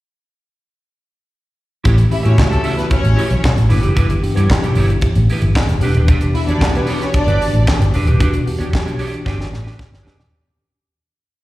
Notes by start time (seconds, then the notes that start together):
1.84 A1 E3 A3 C#4 E4 G4 C#5, kick, closed hi-hat
1.98 muted clean electric guitar stroke, closed hi-hat
2.11 E3 A3 C#4 E4 G4 E5, muted clean electric guitar stroke, open hi-hat
2.23 A2 E3 A3 B3 C#4 E4 F#4 G4 C#5 E5, closed hi-hat
2.31 C#4
2.37 C#2, muted clean electric guitar stroke, kick, snare, clap
2.50 A3 E4 G4 A4 E5, closed hi-hat
2.63 E4 G4 E5, open hi-hat
2.75 B3 B4, muted clean electric guitar stroke, snare, closed hi-hat
2.91 C#4 C#5, kick, closed hi-hat
3.02 A1, muted clean electric guitar stroke, closed hi-hat
3.16 E4 G4 C#5, open hi-hat
3.29 B1, muted clean electric guitar stroke, closed hi-hat
3.43 muted clean electric guitar stroke, kick, snare, clap
3.56 A1, muted clean electric guitar stroke, closed hi-hat
3.69 G1 E3 A#3 D4 E4 G4 B4, open hi-hat
3.76 B3
3.82 F#1 E4 G4 B4, closed hi-hat
3.95 G1 E4 G4 B4, kick, closed hi-hat
4.10 muted clean electric guitar stroke, closed hi-hat
4.21 E3 B3 D4 G4, muted clean electric guitar stroke, open hi-hat
4.34 G2 E3 B3 D4 E4 G4 C#5, closed hi-hat
4.49 B1, muted clean electric guitar stroke, kick, snare, clap
4.63 E4 G4 C#5, closed hi-hat
4.75 G1 E4 G4 C#5, open hi-hat
4.90 muted clean electric guitar stroke, closed hi-hat
5.01 kick, closed hi-hat
5.15 A1, muted clean electric guitar stroke, closed hi-hat
5.30 E4 G4 B4, open hi-hat
5.42 G1, muted clean electric guitar stroke, closed hi-hat
5.55 muted clean electric guitar stroke, kick, snare, clap
5.69 E1, muted clean electric guitar stroke, closed hi-hat
5.80 E1 E3 B3 D4 G4, open hi-hat
5.84 B4
5.95 D#1 D4 G4 B4, closed hi-hat
6.08 E1 D4 G4 B4, kick, closed hi-hat
6.21 muted clean electric guitar stroke, closed hi-hat
6.34 E3 B3 D4 E4 E5, muted clean electric guitar stroke, open hi-hat
6.46 E2 E3 B3 D4 F#4 G4 C#5 D5, closed hi-hat
6.51 D4 G4
6.61 B1, muted clean electric guitar stroke, kick, snare, clap
6.74 B3 D4 G4 B4 C#5, closed hi-hat
6.87 D4 G4 C#5, open hi-hat
7.02 C#4 C#5, muted clean electric guitar stroke, snare, closed hi-hat
7.14 D4 D5, muted clean electric guitar stroke, kick, closed hi-hat
7.27 G1 D4 G4 B4, closed hi-hat
7.42 muted clean electric guitar stroke, open hi-hat
7.53 A1, muted clean electric guitar stroke, closed hi-hat
7.67 muted clean electric guitar stroke, kick, snare, clap
7.80 G1, muted clean electric guitar stroke, closed hi-hat
7.94 E1 D4 G4 B4, open hi-hat
8.06 D#1 D4 G4 B4, closed hi-hat
8.19 E1 E3 B3 D4 F#4 G4 B4, kick, closed hi-hat
8.33 muted clean electric guitar stroke, closed hi-hat
8.45 E3 B3 D4 G4, muted clean electric guitar stroke, open hi-hat
8.59 E2 E3 B3 D4 G4 C#5, closed hi-hat
8.71 B1, muted clean electric guitar stroke, kick, snare
8.76 clap
8.84 D4 G4 C#5, closed hi-hat
8.99 D4 G4 C#5, open hi-hat
9.12 muted clean electric guitar stroke, closed hi-hat
9.25 G1 D4 G4 B4, kick, snare
9.38 muted clean electric guitar stroke, snare
9.51 A1, muted clean electric guitar stroke, snare
9.64 D4 G4 B4, snare
9.78 muted clean electric guitar stroke, kick, snare
9.91 G1, muted clean electric guitar stroke, snare
10.03 E1 D4 G4 B4, snare
10.17 D#1 D4 G4 B4, snare